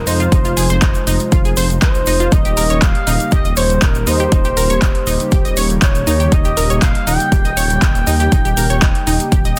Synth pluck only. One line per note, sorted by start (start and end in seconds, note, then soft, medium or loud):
0.07 0.19 D#4 medium
0.07 0.19 D#5 medium
0.20 0.27 F4 medium
0.20 0.27 F5 medium
0.32 0.40 D#4 medium
0.32 0.40 D#5 medium
0.45 0.49 F4 medium
0.45 0.49 F5 medium
0.57 0.69 G#4 medium
0.57 0.69 G#5 medium
0.70 0.77 C5 medium
0.70 0.77 C6 medium
0.82 0.90 D#5 medium
0.82 0.90 D#6 medium
1.07 1.19 D#4 medium
1.07 1.19 D#5 medium
1.32 1.44 F4 medium
1.32 1.44 F5 medium
1.45 1.49 G#4 medium
1.45 1.49 G#5 medium
1.57 1.65 C5 medium
1.57 1.65 C6 medium
1.82 1.90 D#5 medium
1.82 1.90 D#6 medium
2.07 2.19 D#4 medium
2.07 2.19 D#5 medium
2.20 2.27 F4 medium
2.20 2.27 F5 medium
2.32 2.40 D#4 medium
2.32 2.40 D#5 medium
2.45 2.49 G4 medium
2.45 2.49 G5 medium
2.57 2.69 A#4 medium
2.57 2.69 A#5 medium
2.70 2.77 C#5 medium
2.70 2.77 C#6 medium
2.82 2.90 D#5 medium
2.82 2.90 D#6 medium
3.07 3.19 D#4 medium
3.07 3.19 D#5 medium
3.32 3.44 G4 medium
3.32 3.44 G5 medium
3.45 3.56 D#5 medium
3.45 3.56 D#6 medium
3.57 3.65 C#5 medium
3.57 3.65 C#6 medium
3.82 3.90 D#5 medium
3.82 3.90 D#6 medium
4.07 4.19 D#4 medium
4.07 4.19 D#5 medium
4.20 4.27 G4 medium
4.20 4.27 G5 medium
4.32 4.40 D#4 medium
4.32 4.40 D#5 medium
4.45 4.49 G4 medium
4.45 4.49 G5 medium
4.57 4.69 A#4 medium
4.57 4.69 A#5 medium
4.70 4.77 C#5 medium
4.70 4.77 C#6 medium
4.82 4.90 D#5 medium
4.82 4.90 D#6 medium
5.07 5.19 D#4 medium
5.07 5.19 D#5 medium
5.32 5.44 G4 medium
5.32 5.44 G5 medium
5.45 5.56 D#5 medium
5.45 5.56 D#6 medium
5.57 5.65 C#5 medium
5.57 5.65 C#6 medium
5.82 5.90 D#5 medium
5.82 5.90 D#6 medium
6.07 6.19 D#4 medium
6.07 6.19 D#5 medium
6.20 6.27 G4 medium
6.20 6.27 G5 medium
6.32 6.40 D#4 medium
6.32 6.40 D#5 medium
6.45 6.49 G4 medium
6.45 6.49 G5 medium
6.57 6.69 A#4 medium
6.57 6.69 A#5 medium
6.70 6.77 C#5 medium
6.70 6.77 C#6 medium
6.82 6.90 D#5 medium
6.82 6.90 D#6 medium
7.07 7.19 D#4 medium
7.07 7.19 D#5 medium
7.32 7.44 G4 medium
7.32 7.44 G5 medium
7.45 7.56 D#5 medium
7.45 7.56 D#6 medium
7.57 7.65 C#5 medium
7.57 7.65 C#6 medium
7.82 7.90 D#5 medium
7.82 7.90 D#6 medium
8.07 8.19 D#4 medium
8.07 8.19 D#5 medium
8.20 8.27 G4 medium
8.20 8.27 G5 medium
8.32 8.40 D#4 medium
8.32 8.40 D#5 medium
8.45 8.49 G4 medium
8.45 8.49 G5 medium
8.57 8.69 A#4 medium
8.57 8.69 A#5 medium
8.70 8.77 C#5 medium
8.70 8.77 C#6 medium
8.82 8.90 D#5 medium
8.82 8.90 D#6 medium
9.07 9.19 D#4 medium
9.07 9.19 D#5 medium
9.32 9.44 G4 medium
9.32 9.44 G5 medium
9.45 9.56 D#5 medium
9.45 9.56 D#6 medium